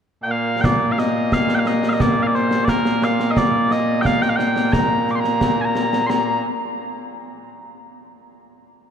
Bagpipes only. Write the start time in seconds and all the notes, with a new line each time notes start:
0.23 A#2 A#3 G5
0.31 F5
0.61 D5 G5
0.92 F5
0.99 D#5
1.33 F5
1.55 G5
1.59 F5
1.67 D#5
1.89 D#5 F5
2.00 D5
2.22 F5
2.27 D5
2.35 C5
2.65 D5
2.69 A#4
3.04 F5
3.31 D#5
3.37 D5
3.71 D#5
4.01 G5
4.06 F5
4.22 G5
4.29 F5
4.36 G5
4.73 A#5
5.11 D6
5.15 C6
5.20 A#5
5.61 G#5 A#5
6.07 A#5 C6